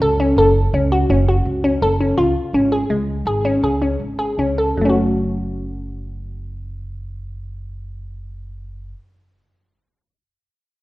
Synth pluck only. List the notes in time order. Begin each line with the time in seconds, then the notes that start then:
0.02 A4
0.20 C#4
0.38 A4
0.74 C#4
0.92 F#4
1.10 C#4
1.29 F#4
1.64 C#4
1.82 A4
2.00 C#4
2.17 F4
2.54 C#4
2.72 G#4
2.90 G#3
3.27 G#4
3.45 C#4
3.63 G#4
3.81 C#4
4.19 G#4
4.39 C#4
4.58 A4
4.77 F#3 A3
4.85 C#4
4.89 F#4